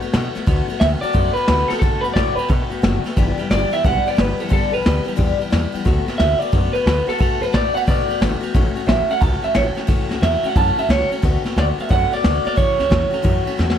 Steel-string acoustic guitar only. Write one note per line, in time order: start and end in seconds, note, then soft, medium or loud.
0.01 0.13 A3 soft
0.01 0.14 B3 medium
0.01 0.13 F#4 medium
0.13 0.35 D3 medium
0.13 0.35 A3 medium
0.13 0.35 B3 medium
0.13 0.34 F#4 medium
0.35 0.46 A3 medium
0.35 0.47 B3 medium
0.35 0.47 F#4 medium
0.47 0.68 D3 medium
0.47 0.69 A3 medium
0.47 0.69 B3 loud
0.47 0.67 F#4 loud
0.68 0.80 A3 medium
0.68 0.81 B3 medium
0.68 0.80 F#4 medium
0.80 1.02 D3 medium
0.80 1.02 A3 medium
0.80 1.03 B3 medium
0.80 1.01 F#4 medium
1.02 1.13 A3 soft
1.02 1.13 B3 medium
1.02 1.14 F#4 medium
1.13 1.35 D3 medium
1.13 1.36 A3 medium
1.13 1.35 B3 medium
1.13 1.33 F#4 medium
1.35 1.47 A3 soft
1.35 1.48 B3 medium
1.35 1.47 F#4 medium
1.48 1.69 D3 medium
1.48 1.70 A3 medium
1.48 1.70 B3 medium
1.48 1.69 F#4 medium
1.70 1.82 A3 soft
1.70 1.82 B3 medium
1.70 1.82 F#4 medium
1.82 2.03 D3 medium
1.82 2.04 A3 medium
1.82 2.04 B3 medium
1.82 2.03 F#4 medium
2.04 2.15 A3 soft
2.04 2.16 B3 medium
2.04 2.16 F#4 medium
2.16 2.37 D3 medium
2.16 2.38 A3 medium
2.16 2.37 B3 medium
2.16 2.36 F#4 medium
2.37 2.48 A3 soft
2.37 2.49 B3 medium
2.37 2.49 F#4 medium
2.48 2.70 D3 medium
2.48 2.71 A3 medium
2.48 2.70 B3 medium
2.48 2.69 F#4 medium
2.70 2.82 A3 soft
2.70 2.83 B3 medium
2.70 2.82 F#4 medium
2.82 3.04 D3 medium
2.82 3.05 A3 medium
2.82 3.04 B3 medium
2.82 3.03 F#4 medium
3.04 3.17 A3 soft
3.04 3.17 B3 medium
3.04 3.16 F#4 medium
3.16 3.38 G2 medium
3.16 3.38 D3 medium
3.16 3.39 E3 medium
3.16 3.39 G3 medium
3.16 3.38 B3 loud
3.16 3.36 G4 loud
3.37 3.49 E3 soft
3.37 3.50 G3 medium
3.37 3.50 B3 medium
3.37 3.50 G4 medium
3.50 3.72 E3 medium
3.50 3.72 G3 medium
3.50 3.71 B3 medium
3.50 3.70 G4 medium
3.71 3.84 E3 soft
3.71 3.84 G3 medium
3.71 3.84 B3 medium
3.71 3.84 G4 medium
3.84 4.06 G2 medium
3.84 4.06 D3 medium
3.84 4.06 E3 medium
3.84 4.06 G3 medium
3.84 4.06 B3 medium
3.84 4.04 G4 loud
4.06 4.15 E3 soft
4.06 4.16 G3 soft
4.06 4.17 B3 medium
4.06 4.18 G4 medium
4.16 4.39 E3 medium
4.16 4.39 G3 medium
4.16 4.38 B3 medium
4.16 4.37 G4 medium
4.38 4.49 E3 soft
4.38 4.49 G3 soft
4.38 4.49 B3 medium
4.38 4.49 G4 medium
4.49 4.72 G2 medium
4.49 4.72 D3 medium
4.49 4.72 E3 medium
4.49 4.71 G3 medium
4.49 4.70 B3 medium
4.49 4.70 G4 medium
4.71 4.81 E3 soft
4.71 4.83 G3 soft
4.71 4.84 B3 medium
4.71 4.84 G4 medium
4.82 5.05 E3 medium
4.82 5.05 G3 medium
4.82 5.04 B3 medium
4.82 5.03 G4 medium
5.04 5.16 E3 medium
5.04 5.16 G3 medium
5.04 5.17 B3 medium
5.04 5.16 G4 medium
5.15 5.39 G2 medium
5.15 5.39 D3 medium
5.15 5.39 E3 loud
5.15 5.39 G3 medium
5.15 5.38 B3 loud
5.15 5.37 G4 loud
5.38 5.49 E3 medium
5.38 5.50 G3 medium
5.38 5.51 B3 medium
5.38 5.51 G4 medium
5.50 5.73 E3 medium
5.50 5.73 G3 medium
5.50 5.73 B3 medium
5.50 5.71 G4 medium
5.72 5.84 E3 medium
5.72 5.85 G3 medium
5.72 5.84 B3 medium
5.72 5.85 G4 medium
5.84 6.07 D3 medium
5.84 6.07 A3 medium
5.84 6.06 B3 medium
5.84 6.05 F#4 loud
6.06 6.18 A3 medium
6.06 6.18 B3 medium
6.06 6.19 F#4 medium
6.17 6.40 D3 medium
6.17 6.41 A3 medium
6.17 6.40 B3 medium
6.17 6.38 F#4 medium
6.39 6.51 A3 medium
6.39 6.52 B3 medium
6.39 6.52 F#4 medium
6.52 6.74 D3 medium
6.52 6.74 A3 medium
6.52 6.74 B3 medium
6.52 6.73 F#4 medium
6.74 6.86 A3 soft
6.74 6.87 B3 medium
6.74 6.86 F#4 medium
6.86 7.08 D3 medium
6.86 7.08 A3 medium
6.86 7.07 B3 medium
6.86 7.05 F#4 medium
7.07 7.18 A3 soft
7.07 7.18 B3 soft
7.07 7.19 F#4 medium
7.18 7.41 D3 medium
7.18 7.41 A3 medium
7.18 7.41 B3 medium
7.18 7.39 F#4 medium
7.40 7.51 A3 medium
7.40 7.53 B3 medium
7.40 7.53 F#4 medium
7.52 7.75 D3 medium
7.52 7.75 A3 medium
7.52 7.74 B3 medium
7.52 7.73 F#4 medium
7.74 7.86 A3 medium
7.74 7.87 B3 medium
7.74 7.87 F#4 medium
7.86 8.08 D3 medium
7.86 8.09 A3 medium
7.86 8.07 B3 medium
7.86 8.06 F#4 medium
8.07 8.20 A3 soft
8.07 8.21 B3 medium
8.07 8.20 F#4 medium
8.20 8.42 D3 medium
8.20 8.42 A3 medium
8.20 8.41 B3 medium
8.20 8.39 F#4 medium
8.41 8.54 A3 medium
8.41 8.54 B3 medium
8.41 8.54 F#4 medium
8.54 8.76 A2 medium
8.54 8.76 E3 medium
8.54 8.76 A3 medium
8.54 8.75 C#4 loud
8.54 8.74 F#4 loud
8.75 8.86 A3 soft
8.75 8.87 C#4 medium
8.75 8.88 F#4 medium
8.86 9.09 E3 medium
8.86 9.09 A3 medium
8.86 9.09 C#4 medium
8.86 9.07 F#4 medium
9.08 9.20 A3 soft
9.08 9.21 C#4 medium
9.08 9.21 F#4 medium
9.20 9.43 A2 medium
9.20 9.43 E3 medium
9.20 9.43 A3 medium
9.20 9.42 C#4 medium
9.20 9.41 F#4 medium
9.42 9.54 A3 soft
9.42 9.55 C#4 medium
9.42 9.54 F#4 medium
9.54 9.76 E3 medium
9.54 9.77 A3 medium
9.54 9.75 C#4 medium
9.54 9.74 F#4 medium
9.75 9.87 A3 medium
9.75 9.87 C#4 medium
9.75 9.88 F#4 medium
9.87 10.09 A2 medium
9.87 10.10 E3 medium
9.87 10.10 A3 medium
9.87 10.10 C#4 loud
9.87 10.08 F#4 medium
10.09 10.21 A3 medium
10.09 10.23 C#4 medium
10.09 10.22 F#4 medium
10.21 10.43 E3 medium
10.21 10.44 A3 medium
10.21 10.44 C#4 medium
10.21 10.42 F#4 medium
10.43 10.55 A3 soft
10.43 10.56 C#4 medium
10.43 10.56 F#4 medium
10.55 10.77 A2 medium
10.55 10.78 E3 medium
10.55 10.78 A3 medium
10.55 10.77 C#4 medium
10.55 10.75 F#4 medium
10.77 10.89 A3 soft
10.77 10.90 C#4 medium
10.77 10.89 F#4 medium
10.89 11.11 E3 medium
10.89 11.11 A3 medium
10.89 11.10 C#4 medium
10.89 11.09 F#4 medium
11.10 11.22 A3 soft
11.10 11.23 C#4 medium
11.10 11.23 F#4 medium
11.22 11.44 D3 medium
11.22 11.45 A3 medium
11.22 11.45 B3 loud
11.22 11.43 F#4 loud
11.44 11.56 A3 medium
11.44 11.57 B3 medium
11.44 11.56 F#4 medium
11.56 11.78 D3 medium
11.56 11.78 A3 medium
11.56 11.78 B3 medium
11.56 11.77 F#4 medium
11.78 11.88 A3 soft
11.78 11.89 B3 medium
11.78 11.90 F#4 medium
11.89 12.11 D3 medium
11.89 12.11 A3 medium
11.89 12.11 B3 medium
11.89 12.10 F#4 loud
12.11 12.23 A3 soft
12.11 12.24 B3 soft
12.11 12.23 F#4 medium
12.24 12.45 D3 medium
12.24 12.46 A3 medium
12.24 12.44 B3 medium
12.24 12.43 F#4 medium
12.44 12.56 A3 soft
12.44 12.57 B3 medium
12.44 12.57 F#4 medium
12.56 12.78 A2 medium
12.56 12.79 E3 medium
12.56 12.79 A3 medium
12.56 12.78 C#4 medium
12.56 12.76 F#4 medium
12.77 12.89 A3 soft
12.77 12.90 C#4 medium
12.77 12.90 F#4 medium
12.89 13.12 E3 medium
12.89 13.12 A3 medium
12.89 13.11 C#4 medium
12.89 13.09 F#4 medium
13.11 13.22 A3 medium
13.11 13.23 C#4 medium
13.11 13.23 F#4 medium
13.22 13.45 A2 medium
13.22 13.45 E3 medium
13.22 13.46 A3 loud
13.22 13.46 C#4 medium
13.22 13.44 F#4 loud
13.45 13.58 A3 soft
13.45 13.59 C#4 medium
13.45 13.58 F#4 medium
13.57 13.78 E3 medium
13.57 13.78 A3 medium
13.57 13.78 C#4 medium
13.57 13.78 F#4 medium